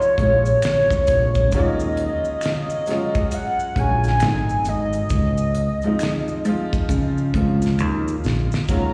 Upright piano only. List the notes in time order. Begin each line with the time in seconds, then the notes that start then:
Already playing: C3 F3 G#3 C4 D#4 E4 F4
0.19 C3 F3 G#3 E4
0.28 F4
1.54 F#3 G#3 C#4 F4
2.87 F#3 G#3 C#4 F4
3.15 F#3 G#3 C#4 F#4
3.77 F#3 G#3 C#4 F#4
4.21 F#3 A3 C4 D#4
5.84 F3 G#3 C4 D#4
6.45 F3 G#3 C4 F4
7.35 F3 G#3 C4 F4
8.69 F#3 G#3 C#4 F4